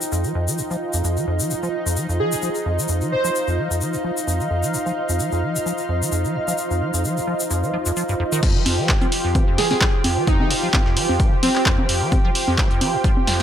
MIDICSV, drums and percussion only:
0, 0, Header, 1, 2, 480
1, 0, Start_track
1, 0, Tempo, 461538
1, 1085, Time_signature, 4, 2, 24, 8
1, 13963, End_track
2, 0, Start_track
2, 0, Title_t, "Drums"
2, 13, Note_on_c, 9, 82, 75
2, 117, Note_off_c, 9, 82, 0
2, 126, Note_on_c, 9, 82, 63
2, 230, Note_off_c, 9, 82, 0
2, 249, Note_on_c, 9, 82, 38
2, 353, Note_off_c, 9, 82, 0
2, 498, Note_on_c, 9, 82, 74
2, 602, Note_off_c, 9, 82, 0
2, 603, Note_on_c, 9, 82, 60
2, 707, Note_off_c, 9, 82, 0
2, 736, Note_on_c, 9, 82, 38
2, 840, Note_off_c, 9, 82, 0
2, 969, Note_on_c, 9, 82, 69
2, 1073, Note_off_c, 9, 82, 0
2, 1085, Note_on_c, 9, 82, 64
2, 1189, Note_off_c, 9, 82, 0
2, 1216, Note_on_c, 9, 82, 35
2, 1320, Note_off_c, 9, 82, 0
2, 1450, Note_on_c, 9, 82, 69
2, 1554, Note_off_c, 9, 82, 0
2, 1562, Note_on_c, 9, 82, 64
2, 1666, Note_off_c, 9, 82, 0
2, 1697, Note_on_c, 9, 82, 36
2, 1801, Note_off_c, 9, 82, 0
2, 1941, Note_on_c, 9, 82, 69
2, 2042, Note_off_c, 9, 82, 0
2, 2042, Note_on_c, 9, 82, 60
2, 2146, Note_off_c, 9, 82, 0
2, 2180, Note_on_c, 9, 82, 37
2, 2284, Note_off_c, 9, 82, 0
2, 2411, Note_on_c, 9, 82, 78
2, 2515, Note_off_c, 9, 82, 0
2, 2516, Note_on_c, 9, 82, 58
2, 2620, Note_off_c, 9, 82, 0
2, 2650, Note_on_c, 9, 82, 38
2, 2754, Note_off_c, 9, 82, 0
2, 2902, Note_on_c, 9, 82, 74
2, 2996, Note_off_c, 9, 82, 0
2, 2996, Note_on_c, 9, 82, 60
2, 3100, Note_off_c, 9, 82, 0
2, 3132, Note_on_c, 9, 82, 32
2, 3236, Note_off_c, 9, 82, 0
2, 3376, Note_on_c, 9, 82, 67
2, 3480, Note_off_c, 9, 82, 0
2, 3487, Note_on_c, 9, 82, 62
2, 3591, Note_off_c, 9, 82, 0
2, 3615, Note_on_c, 9, 82, 31
2, 3719, Note_off_c, 9, 82, 0
2, 3861, Note_on_c, 9, 82, 78
2, 3962, Note_off_c, 9, 82, 0
2, 3962, Note_on_c, 9, 82, 60
2, 4066, Note_off_c, 9, 82, 0
2, 4092, Note_on_c, 9, 82, 35
2, 4196, Note_off_c, 9, 82, 0
2, 4338, Note_on_c, 9, 82, 65
2, 4442, Note_off_c, 9, 82, 0
2, 4452, Note_on_c, 9, 82, 58
2, 4556, Note_off_c, 9, 82, 0
2, 4578, Note_on_c, 9, 82, 32
2, 4682, Note_off_c, 9, 82, 0
2, 4815, Note_on_c, 9, 82, 71
2, 4919, Note_off_c, 9, 82, 0
2, 4929, Note_on_c, 9, 82, 59
2, 5033, Note_off_c, 9, 82, 0
2, 5058, Note_on_c, 9, 82, 34
2, 5162, Note_off_c, 9, 82, 0
2, 5295, Note_on_c, 9, 82, 62
2, 5399, Note_off_c, 9, 82, 0
2, 5403, Note_on_c, 9, 82, 53
2, 5507, Note_off_c, 9, 82, 0
2, 5531, Note_on_c, 9, 82, 31
2, 5635, Note_off_c, 9, 82, 0
2, 5779, Note_on_c, 9, 82, 71
2, 5883, Note_off_c, 9, 82, 0
2, 5892, Note_on_c, 9, 82, 63
2, 5996, Note_off_c, 9, 82, 0
2, 6009, Note_on_c, 9, 82, 36
2, 6113, Note_off_c, 9, 82, 0
2, 6266, Note_on_c, 9, 82, 69
2, 6363, Note_off_c, 9, 82, 0
2, 6363, Note_on_c, 9, 82, 61
2, 6467, Note_off_c, 9, 82, 0
2, 6498, Note_on_c, 9, 82, 30
2, 6602, Note_off_c, 9, 82, 0
2, 6740, Note_on_c, 9, 82, 64
2, 6839, Note_off_c, 9, 82, 0
2, 6839, Note_on_c, 9, 82, 59
2, 6943, Note_off_c, 9, 82, 0
2, 6977, Note_on_c, 9, 82, 38
2, 7081, Note_off_c, 9, 82, 0
2, 7217, Note_on_c, 9, 82, 68
2, 7321, Note_off_c, 9, 82, 0
2, 7327, Note_on_c, 9, 82, 54
2, 7431, Note_off_c, 9, 82, 0
2, 7460, Note_on_c, 9, 82, 36
2, 7564, Note_off_c, 9, 82, 0
2, 7692, Note_on_c, 9, 82, 75
2, 7796, Note_off_c, 9, 82, 0
2, 7805, Note_on_c, 9, 82, 61
2, 7909, Note_off_c, 9, 82, 0
2, 7941, Note_on_c, 9, 82, 32
2, 8045, Note_off_c, 9, 82, 0
2, 8170, Note_on_c, 9, 82, 75
2, 8274, Note_off_c, 9, 82, 0
2, 8285, Note_on_c, 9, 82, 57
2, 8389, Note_off_c, 9, 82, 0
2, 8409, Note_on_c, 9, 82, 34
2, 8513, Note_off_c, 9, 82, 0
2, 8654, Note_on_c, 9, 82, 70
2, 8758, Note_off_c, 9, 82, 0
2, 8765, Note_on_c, 9, 36, 118
2, 8765, Note_on_c, 9, 42, 89
2, 8765, Note_on_c, 9, 49, 108
2, 8869, Note_off_c, 9, 36, 0
2, 8869, Note_off_c, 9, 42, 0
2, 8869, Note_off_c, 9, 49, 0
2, 9005, Note_on_c, 9, 42, 68
2, 9005, Note_on_c, 9, 46, 105
2, 9005, Note_on_c, 9, 63, 58
2, 9109, Note_off_c, 9, 42, 0
2, 9109, Note_off_c, 9, 46, 0
2, 9109, Note_off_c, 9, 63, 0
2, 9245, Note_on_c, 9, 36, 118
2, 9245, Note_on_c, 9, 38, 119
2, 9245, Note_on_c, 9, 42, 88
2, 9247, Note_on_c, 9, 39, 121
2, 9349, Note_off_c, 9, 36, 0
2, 9349, Note_off_c, 9, 38, 0
2, 9349, Note_off_c, 9, 42, 0
2, 9351, Note_off_c, 9, 39, 0
2, 9375, Note_on_c, 9, 42, 45
2, 9376, Note_on_c, 9, 63, 58
2, 9479, Note_off_c, 9, 42, 0
2, 9480, Note_off_c, 9, 63, 0
2, 9485, Note_on_c, 9, 42, 68
2, 9485, Note_on_c, 9, 46, 108
2, 9589, Note_off_c, 9, 42, 0
2, 9589, Note_off_c, 9, 46, 0
2, 9724, Note_on_c, 9, 42, 88
2, 9725, Note_on_c, 9, 36, 124
2, 9725, Note_on_c, 9, 63, 57
2, 9828, Note_off_c, 9, 42, 0
2, 9829, Note_off_c, 9, 36, 0
2, 9829, Note_off_c, 9, 63, 0
2, 9965, Note_on_c, 9, 38, 61
2, 9965, Note_on_c, 9, 42, 70
2, 9965, Note_on_c, 9, 46, 107
2, 10069, Note_off_c, 9, 38, 0
2, 10069, Note_off_c, 9, 42, 0
2, 10069, Note_off_c, 9, 46, 0
2, 10095, Note_on_c, 9, 42, 45
2, 10096, Note_on_c, 9, 38, 37
2, 10096, Note_on_c, 9, 63, 55
2, 10199, Note_off_c, 9, 42, 0
2, 10200, Note_off_c, 9, 38, 0
2, 10200, Note_off_c, 9, 63, 0
2, 10204, Note_on_c, 9, 36, 122
2, 10204, Note_on_c, 9, 38, 118
2, 10204, Note_on_c, 9, 42, 88
2, 10206, Note_on_c, 9, 39, 125
2, 10308, Note_off_c, 9, 36, 0
2, 10308, Note_off_c, 9, 38, 0
2, 10308, Note_off_c, 9, 42, 0
2, 10310, Note_off_c, 9, 39, 0
2, 10445, Note_on_c, 9, 42, 69
2, 10445, Note_on_c, 9, 46, 107
2, 10445, Note_on_c, 9, 63, 59
2, 10549, Note_off_c, 9, 42, 0
2, 10549, Note_off_c, 9, 46, 0
2, 10549, Note_off_c, 9, 63, 0
2, 10684, Note_on_c, 9, 42, 83
2, 10685, Note_on_c, 9, 36, 124
2, 10788, Note_off_c, 9, 42, 0
2, 10789, Note_off_c, 9, 36, 0
2, 10816, Note_on_c, 9, 63, 58
2, 10920, Note_off_c, 9, 63, 0
2, 10925, Note_on_c, 9, 42, 69
2, 10925, Note_on_c, 9, 46, 111
2, 11029, Note_off_c, 9, 42, 0
2, 11029, Note_off_c, 9, 46, 0
2, 11165, Note_on_c, 9, 36, 119
2, 11165, Note_on_c, 9, 38, 120
2, 11165, Note_on_c, 9, 42, 88
2, 11165, Note_on_c, 9, 63, 57
2, 11167, Note_on_c, 9, 39, 126
2, 11269, Note_off_c, 9, 36, 0
2, 11269, Note_off_c, 9, 38, 0
2, 11269, Note_off_c, 9, 42, 0
2, 11269, Note_off_c, 9, 63, 0
2, 11271, Note_off_c, 9, 39, 0
2, 11295, Note_on_c, 9, 38, 58
2, 11399, Note_off_c, 9, 38, 0
2, 11405, Note_on_c, 9, 42, 68
2, 11405, Note_on_c, 9, 46, 110
2, 11509, Note_off_c, 9, 42, 0
2, 11509, Note_off_c, 9, 46, 0
2, 11536, Note_on_c, 9, 63, 57
2, 11640, Note_off_c, 9, 63, 0
2, 11645, Note_on_c, 9, 36, 123
2, 11645, Note_on_c, 9, 42, 89
2, 11749, Note_off_c, 9, 36, 0
2, 11749, Note_off_c, 9, 42, 0
2, 11885, Note_on_c, 9, 42, 71
2, 11886, Note_on_c, 9, 46, 111
2, 11886, Note_on_c, 9, 63, 57
2, 11989, Note_off_c, 9, 42, 0
2, 11990, Note_off_c, 9, 46, 0
2, 11990, Note_off_c, 9, 63, 0
2, 12018, Note_on_c, 9, 39, 38
2, 12122, Note_off_c, 9, 39, 0
2, 12125, Note_on_c, 9, 36, 127
2, 12125, Note_on_c, 9, 38, 109
2, 12125, Note_on_c, 9, 42, 79
2, 12127, Note_on_c, 9, 39, 125
2, 12229, Note_off_c, 9, 36, 0
2, 12229, Note_off_c, 9, 38, 0
2, 12229, Note_off_c, 9, 42, 0
2, 12231, Note_off_c, 9, 39, 0
2, 12256, Note_on_c, 9, 63, 58
2, 12360, Note_off_c, 9, 63, 0
2, 12365, Note_on_c, 9, 42, 68
2, 12365, Note_on_c, 9, 46, 115
2, 12469, Note_off_c, 9, 42, 0
2, 12469, Note_off_c, 9, 46, 0
2, 12605, Note_on_c, 9, 36, 126
2, 12605, Note_on_c, 9, 42, 86
2, 12606, Note_on_c, 9, 63, 60
2, 12709, Note_off_c, 9, 36, 0
2, 12709, Note_off_c, 9, 42, 0
2, 12710, Note_off_c, 9, 63, 0
2, 12845, Note_on_c, 9, 42, 72
2, 12845, Note_on_c, 9, 46, 112
2, 12949, Note_off_c, 9, 42, 0
2, 12949, Note_off_c, 9, 46, 0
2, 12976, Note_on_c, 9, 63, 58
2, 13080, Note_off_c, 9, 63, 0
2, 13085, Note_on_c, 9, 36, 123
2, 13085, Note_on_c, 9, 38, 118
2, 13085, Note_on_c, 9, 42, 89
2, 13087, Note_on_c, 9, 39, 123
2, 13189, Note_off_c, 9, 36, 0
2, 13189, Note_off_c, 9, 38, 0
2, 13189, Note_off_c, 9, 42, 0
2, 13191, Note_off_c, 9, 39, 0
2, 13215, Note_on_c, 9, 42, 46
2, 13319, Note_off_c, 9, 42, 0
2, 13325, Note_on_c, 9, 42, 69
2, 13325, Note_on_c, 9, 46, 112
2, 13325, Note_on_c, 9, 63, 60
2, 13429, Note_off_c, 9, 42, 0
2, 13429, Note_off_c, 9, 46, 0
2, 13429, Note_off_c, 9, 63, 0
2, 13565, Note_on_c, 9, 36, 124
2, 13565, Note_on_c, 9, 42, 86
2, 13669, Note_off_c, 9, 36, 0
2, 13669, Note_off_c, 9, 42, 0
2, 13696, Note_on_c, 9, 63, 60
2, 13800, Note_off_c, 9, 63, 0
2, 13805, Note_on_c, 9, 38, 58
2, 13805, Note_on_c, 9, 42, 69
2, 13805, Note_on_c, 9, 46, 109
2, 13909, Note_off_c, 9, 38, 0
2, 13909, Note_off_c, 9, 42, 0
2, 13909, Note_off_c, 9, 46, 0
2, 13963, End_track
0, 0, End_of_file